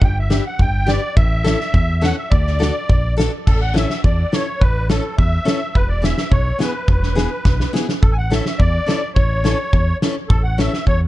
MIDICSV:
0, 0, Header, 1, 5, 480
1, 0, Start_track
1, 0, Key_signature, 2, "major"
1, 0, Tempo, 575264
1, 13, Time_signature, 2, 2, 24, 8
1, 2896, Key_signature, 3, "major"
1, 3853, Tempo, 568182
1, 9311, End_track
2, 0, Start_track
2, 0, Title_t, "Accordion"
2, 0, Program_c, 0, 21
2, 36, Note_on_c, 0, 79, 91
2, 151, Note_off_c, 0, 79, 0
2, 163, Note_on_c, 0, 76, 90
2, 375, Note_off_c, 0, 76, 0
2, 390, Note_on_c, 0, 78, 82
2, 504, Note_off_c, 0, 78, 0
2, 505, Note_on_c, 0, 79, 96
2, 738, Note_on_c, 0, 74, 125
2, 754, Note_off_c, 0, 79, 0
2, 956, Note_off_c, 0, 74, 0
2, 973, Note_on_c, 0, 76, 113
2, 1690, Note_on_c, 0, 78, 109
2, 1722, Note_off_c, 0, 76, 0
2, 1803, Note_off_c, 0, 78, 0
2, 1816, Note_on_c, 0, 76, 97
2, 1919, Note_on_c, 0, 74, 93
2, 1936, Note_off_c, 0, 76, 0
2, 2622, Note_off_c, 0, 74, 0
2, 2887, Note_on_c, 0, 69, 93
2, 3006, Note_off_c, 0, 69, 0
2, 3016, Note_on_c, 0, 78, 95
2, 3132, Note_off_c, 0, 78, 0
2, 3142, Note_on_c, 0, 76, 98
2, 3358, Note_off_c, 0, 76, 0
2, 3377, Note_on_c, 0, 74, 77
2, 3619, Note_on_c, 0, 73, 91
2, 3629, Note_off_c, 0, 74, 0
2, 3838, Note_on_c, 0, 71, 98
2, 3859, Note_off_c, 0, 73, 0
2, 4076, Note_off_c, 0, 71, 0
2, 4097, Note_on_c, 0, 69, 78
2, 4316, Note_off_c, 0, 69, 0
2, 4327, Note_on_c, 0, 76, 102
2, 4813, Note_on_c, 0, 71, 99
2, 4823, Note_off_c, 0, 76, 0
2, 4926, Note_on_c, 0, 74, 81
2, 4927, Note_off_c, 0, 71, 0
2, 5049, Note_on_c, 0, 76, 89
2, 5057, Note_off_c, 0, 74, 0
2, 5289, Note_on_c, 0, 73, 86
2, 5292, Note_off_c, 0, 76, 0
2, 5542, Note_off_c, 0, 73, 0
2, 5546, Note_on_c, 0, 71, 87
2, 5768, Note_off_c, 0, 71, 0
2, 5781, Note_on_c, 0, 71, 77
2, 6470, Note_off_c, 0, 71, 0
2, 6730, Note_on_c, 0, 69, 87
2, 6815, Note_on_c, 0, 80, 59
2, 6828, Note_off_c, 0, 69, 0
2, 6852, Note_off_c, 0, 80, 0
2, 6862, Note_on_c, 0, 78, 79
2, 6979, Note_on_c, 0, 76, 74
2, 6987, Note_off_c, 0, 78, 0
2, 7203, Note_on_c, 0, 74, 105
2, 7220, Note_off_c, 0, 76, 0
2, 7654, Note_off_c, 0, 74, 0
2, 7677, Note_on_c, 0, 73, 93
2, 8376, Note_off_c, 0, 73, 0
2, 8640, Note_on_c, 0, 69, 103
2, 8760, Note_off_c, 0, 69, 0
2, 8767, Note_on_c, 0, 78, 78
2, 8897, Note_off_c, 0, 78, 0
2, 8903, Note_on_c, 0, 76, 89
2, 9117, Note_off_c, 0, 76, 0
2, 9140, Note_on_c, 0, 73, 101
2, 9249, Note_off_c, 0, 73, 0
2, 9311, End_track
3, 0, Start_track
3, 0, Title_t, "Steel-string acoustic guitar"
3, 0, Program_c, 1, 25
3, 252, Note_on_c, 1, 62, 59
3, 257, Note_on_c, 1, 71, 59
3, 258, Note_on_c, 1, 67, 62
3, 362, Note_off_c, 1, 62, 0
3, 363, Note_off_c, 1, 71, 0
3, 365, Note_off_c, 1, 67, 0
3, 721, Note_on_c, 1, 62, 57
3, 724, Note_on_c, 1, 67, 71
3, 731, Note_on_c, 1, 71, 58
3, 836, Note_off_c, 1, 62, 0
3, 838, Note_off_c, 1, 67, 0
3, 839, Note_off_c, 1, 71, 0
3, 1205, Note_on_c, 1, 69, 81
3, 1210, Note_on_c, 1, 64, 52
3, 1213, Note_on_c, 1, 61, 48
3, 1319, Note_off_c, 1, 61, 0
3, 1319, Note_off_c, 1, 64, 0
3, 1319, Note_off_c, 1, 69, 0
3, 1681, Note_on_c, 1, 64, 47
3, 1682, Note_on_c, 1, 61, 60
3, 1686, Note_on_c, 1, 69, 61
3, 1795, Note_off_c, 1, 64, 0
3, 1796, Note_off_c, 1, 61, 0
3, 1798, Note_off_c, 1, 69, 0
3, 2160, Note_on_c, 1, 62, 51
3, 2167, Note_on_c, 1, 66, 48
3, 2170, Note_on_c, 1, 69, 65
3, 2276, Note_off_c, 1, 62, 0
3, 2279, Note_off_c, 1, 69, 0
3, 2280, Note_off_c, 1, 66, 0
3, 2642, Note_on_c, 1, 62, 69
3, 2646, Note_on_c, 1, 66, 55
3, 2650, Note_on_c, 1, 69, 74
3, 2758, Note_off_c, 1, 62, 0
3, 2758, Note_off_c, 1, 66, 0
3, 2762, Note_off_c, 1, 69, 0
3, 3119, Note_on_c, 1, 61, 53
3, 3122, Note_on_c, 1, 69, 59
3, 3126, Note_on_c, 1, 64, 47
3, 3235, Note_off_c, 1, 61, 0
3, 3237, Note_off_c, 1, 69, 0
3, 3239, Note_off_c, 1, 64, 0
3, 3608, Note_on_c, 1, 61, 48
3, 3612, Note_on_c, 1, 64, 47
3, 3617, Note_on_c, 1, 69, 51
3, 3719, Note_off_c, 1, 61, 0
3, 3721, Note_off_c, 1, 64, 0
3, 3721, Note_off_c, 1, 69, 0
3, 4087, Note_on_c, 1, 61, 64
3, 4094, Note_on_c, 1, 64, 52
3, 4096, Note_on_c, 1, 69, 74
3, 4200, Note_off_c, 1, 61, 0
3, 4201, Note_off_c, 1, 64, 0
3, 4204, Note_off_c, 1, 69, 0
3, 4559, Note_on_c, 1, 61, 70
3, 4561, Note_on_c, 1, 64, 61
3, 4566, Note_on_c, 1, 69, 51
3, 4675, Note_off_c, 1, 61, 0
3, 4676, Note_off_c, 1, 64, 0
3, 4677, Note_off_c, 1, 69, 0
3, 5035, Note_on_c, 1, 59, 62
3, 5042, Note_on_c, 1, 64, 49
3, 5043, Note_on_c, 1, 68, 67
3, 5152, Note_off_c, 1, 59, 0
3, 5152, Note_off_c, 1, 64, 0
3, 5155, Note_off_c, 1, 68, 0
3, 5518, Note_on_c, 1, 59, 62
3, 5526, Note_on_c, 1, 64, 50
3, 5532, Note_on_c, 1, 68, 54
3, 5631, Note_off_c, 1, 59, 0
3, 5636, Note_off_c, 1, 64, 0
3, 5636, Note_off_c, 1, 68, 0
3, 5996, Note_on_c, 1, 59, 57
3, 6001, Note_on_c, 1, 64, 54
3, 6003, Note_on_c, 1, 68, 69
3, 6111, Note_off_c, 1, 59, 0
3, 6112, Note_off_c, 1, 64, 0
3, 6112, Note_off_c, 1, 68, 0
3, 6483, Note_on_c, 1, 59, 69
3, 6488, Note_on_c, 1, 64, 49
3, 6491, Note_on_c, 1, 68, 77
3, 6596, Note_off_c, 1, 64, 0
3, 6597, Note_off_c, 1, 59, 0
3, 6600, Note_off_c, 1, 68, 0
3, 6967, Note_on_c, 1, 61, 64
3, 6972, Note_on_c, 1, 64, 51
3, 6977, Note_on_c, 1, 69, 66
3, 7080, Note_off_c, 1, 61, 0
3, 7080, Note_off_c, 1, 64, 0
3, 7084, Note_off_c, 1, 69, 0
3, 7441, Note_on_c, 1, 61, 51
3, 7450, Note_on_c, 1, 64, 39
3, 7452, Note_on_c, 1, 69, 58
3, 7556, Note_off_c, 1, 61, 0
3, 7558, Note_off_c, 1, 64, 0
3, 7561, Note_off_c, 1, 69, 0
3, 7926, Note_on_c, 1, 61, 52
3, 7934, Note_on_c, 1, 64, 43
3, 7937, Note_on_c, 1, 69, 72
3, 8038, Note_off_c, 1, 61, 0
3, 8039, Note_off_c, 1, 64, 0
3, 8043, Note_off_c, 1, 69, 0
3, 8422, Note_on_c, 1, 61, 83
3, 8429, Note_on_c, 1, 64, 53
3, 8430, Note_on_c, 1, 69, 73
3, 8525, Note_off_c, 1, 61, 0
3, 8526, Note_off_c, 1, 64, 0
3, 8528, Note_off_c, 1, 69, 0
3, 8892, Note_on_c, 1, 61, 70
3, 8897, Note_on_c, 1, 64, 62
3, 8904, Note_on_c, 1, 69, 72
3, 8999, Note_off_c, 1, 61, 0
3, 9002, Note_off_c, 1, 64, 0
3, 9006, Note_off_c, 1, 69, 0
3, 9311, End_track
4, 0, Start_track
4, 0, Title_t, "Fingered electric bass"
4, 0, Program_c, 2, 33
4, 13, Note_on_c, 2, 31, 110
4, 326, Note_off_c, 2, 31, 0
4, 497, Note_on_c, 2, 31, 102
4, 808, Note_off_c, 2, 31, 0
4, 975, Note_on_c, 2, 33, 112
4, 1286, Note_off_c, 2, 33, 0
4, 1449, Note_on_c, 2, 40, 117
4, 1763, Note_off_c, 2, 40, 0
4, 1936, Note_on_c, 2, 38, 111
4, 2248, Note_off_c, 2, 38, 0
4, 2417, Note_on_c, 2, 34, 85
4, 2729, Note_off_c, 2, 34, 0
4, 2896, Note_on_c, 2, 33, 92
4, 3207, Note_off_c, 2, 33, 0
4, 3373, Note_on_c, 2, 40, 97
4, 3533, Note_off_c, 2, 40, 0
4, 3848, Note_on_c, 2, 33, 97
4, 4163, Note_off_c, 2, 33, 0
4, 4333, Note_on_c, 2, 40, 85
4, 4494, Note_off_c, 2, 40, 0
4, 4813, Note_on_c, 2, 28, 94
4, 5123, Note_off_c, 2, 28, 0
4, 5286, Note_on_c, 2, 35, 110
4, 5446, Note_off_c, 2, 35, 0
4, 5768, Note_on_c, 2, 28, 86
4, 6080, Note_off_c, 2, 28, 0
4, 6249, Note_on_c, 2, 35, 91
4, 6411, Note_off_c, 2, 35, 0
4, 6731, Note_on_c, 2, 33, 79
4, 7045, Note_off_c, 2, 33, 0
4, 7218, Note_on_c, 2, 40, 84
4, 7376, Note_off_c, 2, 40, 0
4, 7690, Note_on_c, 2, 33, 101
4, 8002, Note_off_c, 2, 33, 0
4, 8173, Note_on_c, 2, 40, 90
4, 8332, Note_off_c, 2, 40, 0
4, 8653, Note_on_c, 2, 33, 93
4, 8964, Note_off_c, 2, 33, 0
4, 9134, Note_on_c, 2, 40, 91
4, 9294, Note_off_c, 2, 40, 0
4, 9311, End_track
5, 0, Start_track
5, 0, Title_t, "Drums"
5, 13, Note_on_c, 9, 36, 75
5, 97, Note_off_c, 9, 36, 0
5, 255, Note_on_c, 9, 38, 72
5, 255, Note_on_c, 9, 44, 47
5, 339, Note_off_c, 9, 38, 0
5, 339, Note_off_c, 9, 44, 0
5, 496, Note_on_c, 9, 36, 68
5, 579, Note_off_c, 9, 36, 0
5, 735, Note_on_c, 9, 38, 69
5, 735, Note_on_c, 9, 44, 35
5, 819, Note_off_c, 9, 38, 0
5, 819, Note_off_c, 9, 44, 0
5, 974, Note_on_c, 9, 36, 94
5, 1058, Note_off_c, 9, 36, 0
5, 1220, Note_on_c, 9, 38, 80
5, 1220, Note_on_c, 9, 44, 51
5, 1303, Note_off_c, 9, 38, 0
5, 1303, Note_off_c, 9, 44, 0
5, 1339, Note_on_c, 9, 38, 28
5, 1423, Note_off_c, 9, 38, 0
5, 1452, Note_on_c, 9, 36, 67
5, 1535, Note_off_c, 9, 36, 0
5, 1699, Note_on_c, 9, 38, 70
5, 1699, Note_on_c, 9, 44, 44
5, 1783, Note_off_c, 9, 38, 0
5, 1783, Note_off_c, 9, 44, 0
5, 1933, Note_on_c, 9, 36, 85
5, 2016, Note_off_c, 9, 36, 0
5, 2059, Note_on_c, 9, 38, 23
5, 2143, Note_off_c, 9, 38, 0
5, 2185, Note_on_c, 9, 38, 89
5, 2185, Note_on_c, 9, 44, 54
5, 2269, Note_off_c, 9, 38, 0
5, 2269, Note_off_c, 9, 44, 0
5, 2416, Note_on_c, 9, 36, 78
5, 2499, Note_off_c, 9, 36, 0
5, 2666, Note_on_c, 9, 38, 82
5, 2666, Note_on_c, 9, 44, 46
5, 2750, Note_off_c, 9, 38, 0
5, 2750, Note_off_c, 9, 44, 0
5, 2897, Note_on_c, 9, 36, 74
5, 2898, Note_on_c, 9, 49, 70
5, 2980, Note_off_c, 9, 36, 0
5, 2981, Note_off_c, 9, 49, 0
5, 3139, Note_on_c, 9, 38, 88
5, 3139, Note_on_c, 9, 44, 48
5, 3223, Note_off_c, 9, 38, 0
5, 3223, Note_off_c, 9, 44, 0
5, 3254, Note_on_c, 9, 38, 64
5, 3337, Note_off_c, 9, 38, 0
5, 3373, Note_on_c, 9, 36, 70
5, 3456, Note_off_c, 9, 36, 0
5, 3612, Note_on_c, 9, 38, 76
5, 3612, Note_on_c, 9, 44, 43
5, 3696, Note_off_c, 9, 38, 0
5, 3696, Note_off_c, 9, 44, 0
5, 3851, Note_on_c, 9, 36, 78
5, 3935, Note_off_c, 9, 36, 0
5, 4089, Note_on_c, 9, 38, 88
5, 4089, Note_on_c, 9, 44, 46
5, 4173, Note_off_c, 9, 38, 0
5, 4173, Note_off_c, 9, 44, 0
5, 4332, Note_on_c, 9, 36, 78
5, 4417, Note_off_c, 9, 36, 0
5, 4577, Note_on_c, 9, 38, 77
5, 4577, Note_on_c, 9, 44, 48
5, 4662, Note_off_c, 9, 38, 0
5, 4662, Note_off_c, 9, 44, 0
5, 4812, Note_on_c, 9, 36, 78
5, 4897, Note_off_c, 9, 36, 0
5, 5054, Note_on_c, 9, 38, 82
5, 5054, Note_on_c, 9, 44, 54
5, 5139, Note_off_c, 9, 38, 0
5, 5139, Note_off_c, 9, 44, 0
5, 5171, Note_on_c, 9, 38, 73
5, 5255, Note_off_c, 9, 38, 0
5, 5288, Note_on_c, 9, 36, 69
5, 5372, Note_off_c, 9, 36, 0
5, 5530, Note_on_c, 9, 38, 72
5, 5530, Note_on_c, 9, 44, 43
5, 5615, Note_off_c, 9, 38, 0
5, 5615, Note_off_c, 9, 44, 0
5, 5765, Note_on_c, 9, 36, 78
5, 5850, Note_off_c, 9, 36, 0
5, 5890, Note_on_c, 9, 38, 29
5, 5974, Note_off_c, 9, 38, 0
5, 6014, Note_on_c, 9, 38, 77
5, 6014, Note_on_c, 9, 44, 44
5, 6099, Note_off_c, 9, 38, 0
5, 6099, Note_off_c, 9, 44, 0
5, 6247, Note_on_c, 9, 36, 77
5, 6247, Note_on_c, 9, 38, 62
5, 6332, Note_off_c, 9, 36, 0
5, 6332, Note_off_c, 9, 38, 0
5, 6374, Note_on_c, 9, 38, 56
5, 6459, Note_off_c, 9, 38, 0
5, 6501, Note_on_c, 9, 38, 70
5, 6501, Note_on_c, 9, 44, 44
5, 6585, Note_off_c, 9, 38, 0
5, 6585, Note_off_c, 9, 44, 0
5, 6616, Note_on_c, 9, 38, 77
5, 6701, Note_off_c, 9, 38, 0
5, 6733, Note_on_c, 9, 36, 89
5, 6817, Note_off_c, 9, 36, 0
5, 6981, Note_on_c, 9, 38, 70
5, 6981, Note_on_c, 9, 44, 44
5, 7066, Note_off_c, 9, 38, 0
5, 7066, Note_off_c, 9, 44, 0
5, 7096, Note_on_c, 9, 38, 67
5, 7180, Note_off_c, 9, 38, 0
5, 7214, Note_on_c, 9, 36, 79
5, 7299, Note_off_c, 9, 36, 0
5, 7460, Note_on_c, 9, 38, 75
5, 7460, Note_on_c, 9, 44, 41
5, 7544, Note_off_c, 9, 38, 0
5, 7544, Note_off_c, 9, 44, 0
5, 7694, Note_on_c, 9, 36, 79
5, 7778, Note_off_c, 9, 36, 0
5, 7934, Note_on_c, 9, 38, 83
5, 7934, Note_on_c, 9, 44, 41
5, 8019, Note_off_c, 9, 38, 0
5, 8019, Note_off_c, 9, 44, 0
5, 8173, Note_on_c, 9, 36, 77
5, 8257, Note_off_c, 9, 36, 0
5, 8419, Note_on_c, 9, 38, 74
5, 8419, Note_on_c, 9, 44, 43
5, 8504, Note_off_c, 9, 38, 0
5, 8504, Note_off_c, 9, 44, 0
5, 8653, Note_on_c, 9, 36, 95
5, 8738, Note_off_c, 9, 36, 0
5, 8898, Note_on_c, 9, 38, 80
5, 8898, Note_on_c, 9, 44, 41
5, 8982, Note_off_c, 9, 38, 0
5, 8982, Note_off_c, 9, 44, 0
5, 9020, Note_on_c, 9, 38, 60
5, 9105, Note_off_c, 9, 38, 0
5, 9134, Note_on_c, 9, 36, 63
5, 9218, Note_off_c, 9, 36, 0
5, 9311, End_track
0, 0, End_of_file